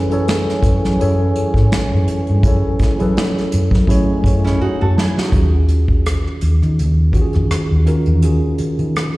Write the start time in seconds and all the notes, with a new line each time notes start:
Already playing: F#2 E3 F#3 C#4 E4 G#4 A4 B4 G#5
0.09 F#3 C#4 E4 G#4 A4, closed hi-hat
0.13 C#5
0.28 finger snap, snare, closed hi-hat
0.49 snare
0.63 F#2, kick, closed hi-hat
0.84 F#3, snare, closed hi-hat
0.98 F#2 F#3 C#4 E4 G#4 A4 C#5, closed hi-hat
1.36 closed hi-hat
1.54 G#2, kick, snare
1.72 finger snap, muted fingered electric bass stroke, snare, closed hi-hat
1.93 F#2
2.08 closed hi-hat
2.27 G2, closed hi-hat
2.43 F#2 F#3 C#4 E4 G#4 A4, kick, closed hi-hat
2.48 C#5
2.79 muted fingered electric bass stroke, kick, snare, closed hi-hat
2.98 F#3 C#4 E4 G#4 A4, closed hi-hat
3.02 B4
3.17 finger snap, snare, closed hi-hat
3.37 snare
3.52 F#2, closed hi-hat
3.71 F#3, kick, snare
3.87 A2 F#3 G#3 A3 C#4 E4 G#4 C#5, kick, closed hi-hat
4.24 F#2, kick, closed hi-hat
4.44 C#4 E4, snare, closed hi-hat
4.61 D#4 F#4, muted fingered electric bass stroke
4.81 F#2 F#4 A4
4.98 F#3 E4 G#4, snare
5.18 D#4 F#4, snare
5.32 D#2 D#3 C#4 F4 F#4 G#4, kick, closed hi-hat
5.69 closed hi-hat
5.88 kick
6.06 cross-stick, closed hi-hat
6.27 cross-stick
6.41 D#2, closed hi-hat
6.62 D#3, cross-stick, closed hi-hat
6.79 D#2, closed hi-hat
7.12 D#3 C#4 F4 F#4 G4, kick, closed hi-hat
7.21 G#4
7.33 F2, cross-stick, closed hi-hat
7.51 muted fingered electric bass stroke, cross-stick, closed hi-hat
7.71 D#2
7.85 D#3 C#4 F4 F#4 A#4, closed hi-hat
8.06 E2, closed hi-hat
8.21 D#2 D#3 C#4 F4 F#4 G#4, closed hi-hat
8.58 muted fingered electric bass stroke, closed hi-hat
8.79 D#3, closed hi-hat
8.96 cross-stick, closed hi-hat